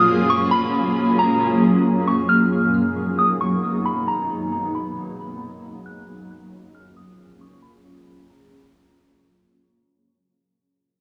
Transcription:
Already playing: ambient pad F#3 A#3 C#4 F4 G#4, synth bell D#6
0.30 synth bell C#6
0.51 synth bell B5
1.19 synth bell A#5
2.08 synth bell C#6
2.29 ambient pad F#3 B3 D#4, synth bell F6
3.19 synth bell D#6
3.41 synth bell C#6
3.85 synth bell B5
4.08 synth bell A#5
4.75 synth bell B5
5.86 ambient pad A#3 C#4 F4 G#4, synth bell F#6
6.75 synth bell F6
6.97 synth bell D#6
7.41 synth bell C#6
7.62 synth bell B5
8.30 synth bell A#5
9.19 synth bell C#6

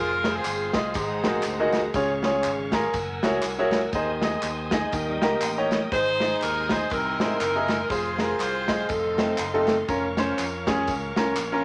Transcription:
Already playing: fingered electric bass F1, grand piano F4 G#4 C5, saxophone section F4 A#4, tonewheel organ G#4 C5 F5 C6
0.24 grand piano F4 G#4 C5, snare, ride, tambourine
0.36 saxophone section C4 F4 G#4
0.45 fingered electric bass G1, clap, ride, tambourine
0.73 fingered electric bass C2, grand piano F4 G#4 D#5, saxophone section G#4, kick, snare, ride, tambourine
0.94 fingered electric bass G#1, grand piano G#2, saxophone section C4 D#4 G#4, tonewheel organ G#4 F#5 A#5, kick, ride, tambourine
1.24 fingered electric bass A#1, grand piano A#3 D#4 F#4 G#4 C5, snare, ride, tambourine
1.43 fingered electric bass D2, clap, ride, tambourine
1.59 grand piano A#3 D#4 F#4 G#4 D#5
1.72 snare, ride, tambourine
1.93 fingered electric bass C#2, grand piano C#3 F4 G#4 C#5, tonewheel organ C#5 F5 C#6, kick, ride, tambourine
2.23 grand piano F4 G#4 C#5, snare, ride, tambourine
2.43 fingered electric bass G#1, clap, ride, tambourine
2.72 grand piano F4 G#4 A#4, kick, snare, ride, tambourine
2.93 fingered electric bass F#1, tonewheel organ A#4 F#5 G#5 E6, kick, ride, tambourine
3.23 fingered electric bass C#2, grand piano A#3 E4 F#4 G#4 C#5, snare, ride, tambourine
3.42 fingered electric bass C2, clap, ride, tambourine
3.59 grand piano A#3 E4 F#4 G#4 C#5
3.71 snare, ride, tambourine
3.92 fingered electric bass D#2, grand piano D#3 D#4 G#4 C5, tonewheel organ C5 D#5 D#6, kick, ride, tambourine
4.22 grand piano D#4 G#4 D#5, snare, ride, tambourine
4.42 fingered electric bass D#2, clap, ride, tambourine
4.71 grand piano D#4 G#4 D#5, kick, snare, ride, tambourine
4.91 fingered electric bass D#2, grand piano D#3, tonewheel organ A#4 G5 D#6, kick, ride, tambourine
5.08 clean electric guitar G3 D#4
5.21 fingered electric bass C#2, grand piano D#4 G4 A#4, clean electric guitar F4, snare, ride, tambourine
5.32 clean electric guitar A#3 G4
5.41 fingered electric bass A1, clap, ride, tambourine
5.58 grand piano D#4 G4 C#5
5.71 snare, ride, tambourine
5.92 fingered electric bass G#1, grand piano G#2 D#4 G#4 C5, saxophone section D#4 G#4 C5, tonewheel organ C5 G#5, kick, ride, tambourine
6.20 grand piano D#4 G#4 D#5, snare, ride, tambourine
6.41 fingered electric bass D#2, saxophone section A#4, clap, ride, tambourine
6.69 grand piano D#4 G#4 C5, saxophone section C5, kick, snare, ride, tambourine
6.90 fingered electric bass C2, grand piano C3, saxophone section D#4 E4 A#4, tonewheel organ A#4 D#5 C6, kick, ride, tambourine
7.19 fingered electric bass G#2, grand piano A#3 D#4 E4 G#4 C5, snare, ride, tambourine
7.40 fingered electric bass F#1, saxophone section D#4 E4 A#4, clap, ride, tambourine
7.56 grand piano A#3 D#4 E4 G#4 A#4
7.68 snare, ride, tambourine
7.89 fingered electric bass F1, saxophone section C4 F4 G#4, grand piano F4 G#4 C5, tonewheel organ G#4 C5 F5 C6, kick, ride, tambourine
8.18 grand piano F4 G#4 A#4, snare, ride, tambourine
8.39 fingered electric bass C2, saxophone section F4 G#4 C5, clap, ride, tambourine
8.68 grand piano F4 G#4 D#5, kick, snare, ride, tambourine
8.89 fingered electric bass F1, saxophone section C4 D#4 A4, tonewheel organ A4 D#5, kick, ride, tambourine
9.18 grand piano A3 C4 D#4 F4 C5, snare, ride, tambourine
9.38 fingered electric bass F#1, clap, ride, tambourine
9.54 grand piano A3 C4 D#4 F4 A4
9.67 snare, ride, tambourine
9.88 fingered electric bass F1, grand piano C#4 F4 A#4, tonewheel organ A#4 C#5 F5 C#6, kick, ride, tambourine
10.17 grand piano C#4 F4 C5, snare, ride, tambourine
10.38 fingered electric bass F2, clap, ride, tambourine
10.67 grand piano C#4 F4 G#4, kick, snare, ride, tambourine
10.87 fingered electric bass C#2, kick, ride, tambourine
11.16 fingered electric bass C2, grand piano C#4 F4 A#4, snare, ride, tambourine
11.36 fingered electric bass A#1, clap, ride, tambourine
11.52 grand piano C#4 F4 A#4

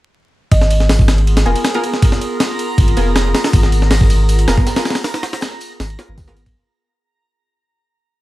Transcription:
0.52 sub bass G#1, ambient pad B3 F4 G#4 A#4, synth pluck D#5, synth texture A#5, kick, ride
0.61 snare
0.70 ride
0.80 snare
0.89 snare, open hi-hat
0.99 kick
1.08 snare, ride
1.18 ride
1.27 ride
1.37 snare, ride
1.46 sub bass F1, synth stab B3 F4 G#4 A#4, synth pluck G#5, ride
1.56 ride
1.65 snare, ride
1.74 synth stab B3 F4 G#4 A#4, ride
1.84 ride
1.94 snare
2.02 kick, ride
2.12 snare
2.21 ride
2.40 snare, ride
2.59 ride
2.78 sub bass G#1, kick, ride
2.88 ride
2.97 sub bass F1, synth stab B3 F4 G#4 A#4, ride
3.16 snare, ride
3.35 snare, open hi-hat
3.44 snare, open hi-hat
3.53 sub bass G#1, kick, ride, tambourine
3.63 snare
3.72 ride, tambourine
3.82 snare
3.90 snare, open hi-hat
4.01 kick, snare
4.10 ride, tambourine
4.29 ride, tambourine
4.38 closed hi-hat, ride
4.48 sub bass F1, synth stab B3 F4 G#4 A#4, snare, open hi-hat, tambourine
4.58 kick
4.67 snare, ride, tambourine
4.76 synth stab B3 F4 G#4 A#4, snare, open hi-hat
4.85 snare, open hi-hat, tambourine
4.90 snare, open hi-hat
4.95 snare, open hi-hat
5.04 snare, open hi-hat, tambourine
5.14 snare, open hi-hat
5.23 snare, open hi-hat, tambourine
5.33 snare, closed hi-hat, open hi-hat
5.41 snare, ride, tambourine
5.61 ride, tambourine
5.80 sub bass G#1, snare, open hi-hat, tambourine
5.90 ride
5.99 synth stab B3 F4 G#4 A#4, snare, open hi-hat, tambourine
6.09 sub bass G#1
6.18 kick, snare, ride, tambourine
6.27 synth stab B3 F4 G#4 A#4, snare, closed hi-hat
6.37 ride, tambourine
6.46 sub bass A#1, kick, ride

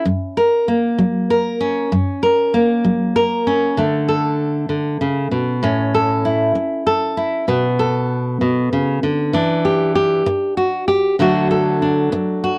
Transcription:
Already playing: nylon-string guitar C#4
0.05 nylon-string guitar F#2
0.37 nylon-string guitar A#4
0.68 nylon-string guitar A#3
0.98 nylon-string guitar F#3
1.30 nylon-string guitar A#4
1.61 nylon-string guitar C#4
1.92 nylon-string guitar F#2
2.23 nylon-string guitar A#4
2.54 nylon-string guitar A#3
2.85 nylon-string guitar F#3
3.16 nylon-string guitar A#4
3.47 nylon-string guitar C#4
3.77 nylon-string guitar D3 A3
4.08 nylon-string guitar A4
4.69 nylon-string guitar D3
5.01 nylon-string guitar C#3
5.31 nylon-string guitar B2
5.63 nylon-string guitar A2 C#4
5.95 nylon-string guitar A4
6.25 nylon-string guitar E4
6.55 muted nylon-string guitar stroke
6.87 nylon-string guitar A4
7.17 nylon-string guitar E4
7.48 nylon-string guitar B2 B3
7.79 nylon-string guitar A4
8.41 nylon-string guitar B2
8.73 nylon-string guitar C#3
9.03 nylon-string guitar D3
9.33 nylon-string guitar E3 D4
9.65 nylon-string guitar G4
9.95 nylon-string guitar G4
10.26 muted nylon-string guitar stroke
10.57 nylon-string guitar F#4
10.88 nylon-string guitar G4
11.19 nylon-string guitar D3 F#3 A3 D4 F#4
11.51 nylon-string guitar A4
11.82 nylon-string guitar D4
12.12 muted nylon-string guitar stroke
12.44 nylon-string guitar F#4

